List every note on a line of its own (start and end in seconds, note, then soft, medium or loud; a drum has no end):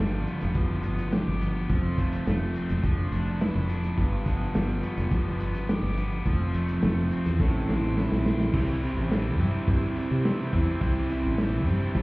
0.00 0.25 G1 medium
0.00 0.85 G2 medium
0.00 1.13 D3 medium
0.00 1.69 D3 medium
0.00 1.70 F3 medium
0.00 1.42 G3 medium
0.00 1.71 B3 medium
0.00 1.72 F4 medium
0.27 0.83 B3 medium
0.27 closed hi-hat medium
0.41 0.85 F1 medium
0.41 snare soft
0.41 closed hi-hat medium
0.54 1.70 F3 medium
0.54 kick loud
0.54 closed hi-hat medium
0.83 1.24 G1 medium
0.83 1.40 B3 medium
0.83 closed hi-hat medium
0.98 closed hi-hat medium
1.12 1.70 G4 medium
1.12 snare medium
1.12 closed hi-hat medium
1.28 1.67 G1 medium
1.41 1.70 B3 medium
1.41 closed hi-hat medium
1.70 2.23 F1 medium
1.70 2.84 F3 medium
1.70 2.83 A3 medium
1.70 2.85 C4 medium
1.70 4.00 F4 medium
1.70 kick loud
1.70 closed hi-hat medium
1.98 2.26 A3 medium
1.98 kick medium
1.98 closed hi-hat medium
2.12 closed hi-hat medium
2.27 2.54 F1 medium
2.27 2.84 A3 medium
2.27 snare loud
2.27 closed hi-hat medium
2.55 2.84 C4 medium
2.55 closed hi-hat medium
2.69 2.83 E1 medium
2.69 closed hi-hat medium
2.84 3.10 F1 loud
2.84 4.00 F3 medium
2.84 3.98 A3 medium
2.84 3.99 D4 medium
2.84 kick loud
2.84 closed hi-hat medium
3.11 3.52 F1 medium
3.11 3.68 D4 medium
3.11 closed hi-hat medium
3.41 3.98 E4 medium
3.41 snare loud
3.41 closed hi-hat medium
3.55 3.95 F1 medium
3.69 3.98 D4 medium
3.69 closed hi-hat medium
3.83 closed hi-hat medium
3.97 4.51 G1 medium
3.97 5.40 G2 medium
3.97 6.25 D3 medium
3.97 6.24 F3 medium
3.97 6.27 B3 medium
3.97 6.28 F4 medium
3.97 kick loud
3.97 closed hi-hat medium
4.26 5.69 D3 medium
4.26 kick medium
4.26 closed hi-hat medium
4.55 4.81 G1 medium
4.55 5.98 G3 medium
4.55 snare loud
4.55 closed hi-hat medium
4.82 5.39 B3 medium
4.82 closed hi-hat medium
4.97 5.40 F1 medium
4.97 snare soft
4.97 closed hi-hat medium
5.11 6.25 F3 medium
5.11 kick loud
5.11 closed hi-hat medium
5.40 5.80 G1 medium
5.40 5.96 B3 medium
5.40 closed hi-hat medium
5.54 closed hi-hat medium
5.69 6.26 G4 medium
5.69 snare loud
5.69 closed hi-hat medium
5.83 6.22 G1 medium
5.97 6.26 B3 medium
5.97 closed hi-hat medium
6.26 6.79 F1 medium
6.26 7.40 F3 medium
6.26 7.40 A3 medium
6.26 7.41 C4 medium
6.26 7.41 F4 medium
6.26 kick loud
6.26 closed hi-hat medium
6.54 6.81 A3 medium
6.54 closed hi-hat medium
6.68 closed hi-hat medium
6.82 7.09 F1 loud
6.82 7.40 A3 medium
6.82 snare loud
6.82 closed hi-hat medium
7.11 7.40 C4 medium
7.11 closed hi-hat medium
7.26 7.39 E2 medium
7.26 closed hi-hat medium
7.40 7.66 A1 medium
7.40 8.53 A2 medium
7.40 8.54 E3 medium
7.40 8.55 A3 medium
7.40 8.55 C4 medium
7.40 8.55 E4 medium
7.40 kick loud
7.40 snare medium
7.68 8.08 A1 medium
7.68 8.25 C4 medium
7.68 snare medium
7.97 8.54 E4 medium
7.97 snare medium
8.12 8.51 A#1 medium
8.12 snare medium
8.26 8.54 C4 medium
8.26 snare loud
8.40 snare medium
8.54 8.93 C2 medium
8.54 8.82 C3 medium
8.54 8.83 E3 medium
8.54 8.83 G3 loud
8.54 8.84 C4 loud
8.54 8.84 E4 loud
8.54 kick loud
8.54 crash loud
8.83 9.11 C3 medium
8.83 9.11 E3 medium
8.83 9.11 G3 medium
8.83 9.12 C4 medium
8.83 9.12 E4 medium
8.83 open hi-hat medium
8.97 9.40 A1 medium
9.11 9.38 C3 medium
9.11 9.39 E3 medium
9.11 9.39 G3 medium
9.11 9.39 C4 medium
9.11 9.40 E4 medium
9.11 snare loud
9.11 open hi-hat medium
9.39 9.66 G2 loud
9.39 9.67 C3 medium
9.39 9.68 E3 medium
9.39 9.68 G3 medium
9.39 9.69 C4 medium
9.39 9.69 E4 medium
9.39 open hi-hat medium
9.68 9.94 G2 loud
9.68 9.95 C3 medium
9.68 9.95 E3 medium
9.68 9.96 G3 medium
9.68 9.96 C4 medium
9.68 9.96 E4 medium
9.68 kick loud
9.68 open hi-hat medium
9.96 10.23 C3 medium
9.96 10.23 E3 medium
9.96 10.24 G3 medium
9.96 10.24 C4 medium
9.96 10.24 E4 medium
9.96 open hi-hat medium
10.11 10.37 C3 medium
10.24 10.52 C3 medium
10.24 10.53 E3 medium
10.24 10.53 G3 medium
10.24 10.53 C4 medium
10.24 10.54 E4 medium
10.24 snare loud
10.24 open hi-hat medium
10.53 10.66 E2 medium
10.53 10.80 C3 medium
10.53 10.81 E3 medium
10.53 10.81 G3 medium
10.53 10.81 C4 medium
10.53 10.82 E4 medium
10.53 kick medium
10.53 open hi-hat medium
10.81 11.21 C2 medium
10.81 11.09 C3 medium
10.81 11.10 E3 medium
10.81 11.10 G3 medium
10.81 11.10 C4 loud
10.81 11.11 E4 medium
10.81 kick loud
10.81 open hi-hat medium
11.09 11.37 C3 medium
11.09 11.38 E3 medium
11.09 11.38 G3 medium
11.09 11.39 C4 medium
11.09 11.39 E4 medium
11.09 open hi-hat medium
11.25 11.68 A1 medium
11.38 11.66 C3 medium
11.38 11.66 E3 medium
11.38 11.67 G3 medium
11.38 11.67 C4 medium
11.38 11.67 E4 medium
11.38 snare loud
11.38 open hi-hat medium
11.66 11.94 G2 medium
11.66 11.94 C3 medium
11.66 11.95 E3 medium
11.66 11.95 G3 medium
11.66 11.95 C4 medium
11.66 11.96 E4 loud
11.66 open hi-hat medium
11.95 12.02 G2 loud
11.95 12.02 C3 medium
11.95 12.02 E3 medium
11.95 12.02 G3 medium
11.95 12.02 C4 medium
11.95 12.02 E4 loud
11.95 kick loud
11.95 open hi-hat medium